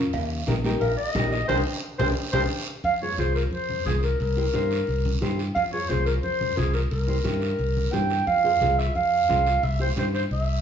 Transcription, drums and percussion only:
0.13 cowbell loud
0.13 high conga soft
0.13 long guiro medium
0.47 high conga medium
0.47 short guiro medium
0.64 short guiro medium
0.81 cowbell medium
0.81 high conga soft
0.81 long guiro medium
1.15 high conga medium
1.15 low timbale medium
1.15 short guiro medium
1.32 short guiro medium
1.49 high conga medium
1.49 high timbale loud
1.49 long guiro loud
1.99 high conga loud
1.99 high timbale loud
1.99 long guiro loud
2.33 high conga loud
2.33 high timbale loud
2.33 long guiro loud
2.84 long guiro medium
3.18 high conga medium
3.18 short guiro medium
3.35 short guiro medium
3.53 long guiro medium
3.70 high conga medium
3.86 high conga medium
3.86 short guiro medium
4.03 short guiro medium
4.20 long guiro medium
4.54 high conga medium
4.54 short guiro medium
4.71 short guiro medium
4.87 long guiro medium
5.06 high conga medium
5.22 high conga medium
5.22 short guiro medium
5.39 short guiro medium
5.56 long guiro medium
5.90 high conga medium
5.90 short guiro medium
6.07 short guiro medium
6.23 long guiro medium
6.41 high conga medium
6.57 high conga medium
6.57 short guiro medium
6.74 short guiro medium
6.91 long guiro medium
7.25 high conga medium
7.25 short guiro medium
7.42 short guiro medium
7.59 long guiro medium
7.77 high conga medium
7.93 high conga medium
7.93 short guiro medium
8.10 short guiro medium
8.27 long guiro medium
8.62 high conga medium
8.62 short guiro medium
8.79 short guiro medium
8.96 long guiro medium
9.29 high conga medium
9.29 short guiro medium
9.47 short guiro medium
9.64 long guiro medium
9.97 high conga medium
9.97 short guiro medium
10.15 short guiro medium
10.31 long guiro medium

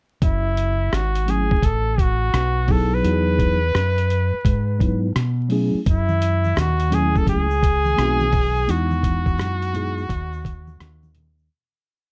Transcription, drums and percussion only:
0.22 kick medium
0.22 closed hi-hat medium
0.57 closed hi-hat medium
0.93 cross-stick loud
0.93 closed hi-hat medium
1.15 closed hi-hat soft
1.28 closed hi-hat medium
1.51 kick medium
1.63 kick medium
1.63 closed hi-hat medium
1.98 kick medium
1.98 closed hi-hat medium
2.34 cross-stick loud
2.34 closed hi-hat medium
2.68 kick medium
2.68 open hi-hat soft
3.04 closed hi-hat medium
3.39 kick medium
3.39 closed hi-hat medium
3.75 cross-stick loud
3.75 closed hi-hat loud
3.98 closed hi-hat soft
4.10 closed hi-hat medium
4.45 kick medium
4.45 closed hi-hat medium
4.80 kick medium
4.80 closed hi-hat medium
5.16 cross-stick loud
5.16 closed hi-hat medium
5.50 open hi-hat soft
5.86 kick medium
5.86 closed hi-hat medium
5.86 shaker medium
6.09 high conga medium
6.09 shaker soft
6.22 closed hi-hat medium
6.22 shaker soft
6.44 high conga soft
6.44 shaker soft
6.56 cross-stick loud
6.56 closed hi-hat medium
6.56 low conga medium
6.56 shaker medium
6.80 closed hi-hat medium
6.80 shaker soft
6.92 closed hi-hat medium
6.92 low conga medium
6.92 shaker soft
7.16 kick loud
7.16 shaker soft
7.27 kick medium
7.27 closed hi-hat medium
7.27 shaker medium
7.51 shaker soft
7.63 kick medium
7.63 closed hi-hat medium
7.63 shaker soft
7.85 high conga medium
7.85 shaker soft
7.98 cross-stick loud
7.98 closed hi-hat medium
7.98 shaker medium
8.20 high conga medium
8.20 shaker soft
8.32 kick medium
8.32 open hi-hat soft
8.32 low conga medium
8.32 shaker soft
8.56 shaker soft
8.68 closed hi-hat medium
8.68 shaker medium
8.91 high conga medium
8.91 shaker soft
9.03 kick medium
9.03 closed hi-hat medium
9.03 shaker soft
9.26 kick medium
9.26 high conga soft
9.26 shaker soft
9.38 cross-stick loud
9.38 closed hi-hat loud
9.38 low conga medium
9.38 shaker medium
9.62 closed hi-hat medium
9.62 shaker soft
9.74 closed hi-hat medium
9.74 low conga medium
9.74 shaker soft
9.98 shaker soft
10.09 kick medium
10.09 closed hi-hat medium
10.09 shaker medium
10.33 shaker soft
10.45 kick medium
10.45 closed hi-hat medium
10.45 high conga soft
10.45 shaker soft
10.68 high conga medium
10.68 shaker soft
10.80 cross-stick loud
10.80 closed hi-hat medium
10.80 shaker medium
11.03 high conga medium
11.03 shaker soft
11.15 closed hi-hat medium
11.15 low conga medium
11.15 shaker soft
11.39 shaker soft

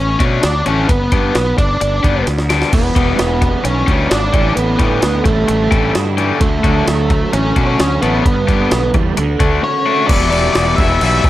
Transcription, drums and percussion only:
0.20 kick medium
0.20 closed hi-hat medium
0.43 snare loud
0.43 closed hi-hat medium
0.66 closed hi-hat medium
0.89 kick loud
0.89 closed hi-hat medium
1.12 kick medium
1.12 closed hi-hat medium
1.35 snare medium
1.35 closed hi-hat medium
1.58 kick medium
1.58 closed hi-hat medium
1.81 closed hi-hat medium
2.04 kick medium
2.04 closed hi-hat medium
2.27 snare soft
2.27 closed hi-hat medium
2.38 snare medium
2.50 snare medium
2.50 closed hi-hat medium
2.62 snare medium
2.73 kick loud
2.73 closed hi-hat medium
2.73 crash medium
2.96 kick medium
2.96 closed hi-hat medium
3.19 snare medium
3.19 closed hi-hat medium
3.42 kick medium
3.42 closed hi-hat medium
3.65 closed hi-hat medium
3.88 kick medium
3.88 closed hi-hat medium
4.11 snare loud
4.11 closed hi-hat medium
4.34 kick loud
4.34 closed hi-hat medium
4.57 closed hi-hat medium
4.79 kick medium
4.79 closed hi-hat medium
5.02 snare loud
5.02 closed hi-hat medium
5.25 kick medium
5.25 closed hi-hat medium
5.48 closed hi-hat medium
5.72 kick medium
5.72 closed hi-hat medium
5.95 snare loud
5.95 closed hi-hat medium
6.18 closed hi-hat medium
6.41 kick medium
6.41 closed hi-hat medium
6.64 kick medium
6.64 closed hi-hat medium
6.88 snare medium
6.88 closed hi-hat medium
7.10 kick medium
7.10 closed hi-hat soft
7.33 closed hi-hat medium
7.56 kick medium
7.56 closed hi-hat medium
7.80 snare loud
7.80 closed hi-hat medium
8.03 closed hi-hat medium
8.26 kick loud
8.26 closed hi-hat medium
8.49 kick medium
8.49 closed hi-hat medium
8.71 snare loud
8.71 closed hi-hat medium
8.94 kick medium
8.94 closed hi-hat medium
9.17 closed hi-hat medium
9.40 kick medium
9.40 closed hi-hat medium
10.09 kick loud
10.09 crash loud
10.09 crash medium
10.32 crash medium
10.55 snare loud
10.55 crash medium
10.78 kick medium
10.78 crash medium
11.01 crash medium
11.24 kick medium
11.24 crash medium

